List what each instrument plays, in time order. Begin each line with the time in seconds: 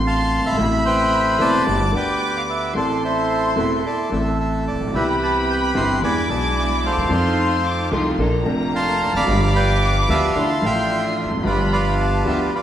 Already playing: upright bass A1, grand piano A1 A2 D3 A3 C4 F4, violin section C6
0.07 bandoneon F5 A5 C6
0.39 grand piano F#1, upright bass F#1
0.45 upright bass G1, grand piano G1, bandoneon E5 B5
0.52 upright bass G#1, grand piano G#1
0.57 grand piano A1 A2 B2 C3 A3 E4, upright bass A1, violin section B5
0.86 bandoneon B4 C5 G5
1.39 grand piano E1 E2 C3 A3 B3 E4, upright bass E1, bandoneon D5 A5
1.66 grand piano G1 G2 D3 A3 B3 G4, upright bass G1, violin section D6
1.92 grand piano D2 D3 A3 B3 G4, upright bass D2, bandoneon D5
1.96 bandoneon B4 G5
2.37 bandoneon F5
2.50 bandoneon E5
2.73 upright bass A1, grand piano A1 A2 E3 A3 C4 A4, bandoneon A4 D5, violin section C6
3.04 bandoneon E4 A4 C5
3.56 upright bass E1, grand piano E1 E2 E3 A3 C4 A4, bandoneon E5
3.86 bandoneon A4 D5
4.09 grand piano A1 A2 E3 A3 C4 A4, upright bass A1
4.13 bandoneon E5
4.40 bandoneon E5
4.67 bandoneon D5
4.73 upright bass A1, grand piano A1
4.80 upright bass A#1, grand piano A#1
4.87 grand piano B1, upright bass B1
4.93 upright bass C2, grand piano C2 C3 E3 B3 C4 G4, string section C4 E4, bandoneon G4 B4 E5, violin section B5
5.10 bandoneon G5
5.23 bandoneon A5
5.51 bandoneon G5
5.63 bandoneon B5
5.75 upright bass G1, grand piano G1 G2 E3 B3 C4 G4, string section B3 C4 E4, bandoneon C6
6.01 upright bass E2, grand piano E2 E3 B3 D4 G#4, string section G#3 D4 E4, bandoneon D5 G#5 B5, violin section D6
6.27 grand piano B1 B2 E3 B3 D4, upright bass B1, string section G#3 D4 E4, bandoneon A5
6.31 grand piano G#4
6.59 bandoneon G#5
6.86 bandoneon A4 C5 F5
6.91 upright bass D2, grand piano D2
6.97 upright bass D#2, grand piano D#2
7.03 grand piano E2, upright bass E2
7.08 grand piano F2 F3 C4 D#4 A4, upright bass F2, string section A3 D#4 F4
7.13 violin section C6
7.66 violin section D6
7.91 grand piano C2 C3 F3 C4 D#4 A4, upright bass C2, string section A3 D#4 F4, violin section C6
8.18 upright bass A#1, grand piano A#1 A#2 F3 A#3 D4 A4, string section A#3 D4 A4, violin section A#5
8.43 grand piano F1 F2 F3 A#3 D4, upright bass F1, string section A3 A#3 D4
8.48 grand piano A3
8.75 bandoneon F5 A5 C6
9.07 upright bass E1, grand piano E2
9.14 upright bass F1, grand piano F2, bandoneon D5 F5 B5
9.20 upright bass F#1, grand piano F#2
9.26 upright bass G1, grand piano G1 G2 F3 B3 D4 G4, string section B3 F4 G4, violin section D6
9.55 bandoneon B4 D5 G5
10.02 bandoneon B5
10.08 upright bass D2, grand piano D2 D3 F3 B3 D4 G4, string section B3 F4 G4, bandoneon E5 F5 A5
10.35 upright bass D2, grand piano D2 D3 E3 A3 D4 F4, string section D4 E4 F4, violin section C6
10.62 upright bass A1, grand piano A1 A2 F3 A3 D4 F4, string section D4 F4, bandoneon E5
10.66 bandoneon G5
11.06 bandoneon F5
11.19 upright bass E1, bandoneon E5
11.25 grand piano E2
11.30 upright bass F1, grand piano F2
11.37 upright bass F#1, grand piano F#2
11.42 upright bass G1, grand piano G1 G2 F3 B3 D4, string section B3 F4 G4, bandoneon B4, violin section B5
11.46 bandoneon F4 D5, grand piano G4
11.72 bandoneon B4 D5 F5
11.98 violin section A5
12.25 grand piano D2 D3 F3 B3 D4 G4, upright bass D2, string section B3 F4 G4, bandoneon E5
12.52 bandoneon F4 B4 D5, violin section B5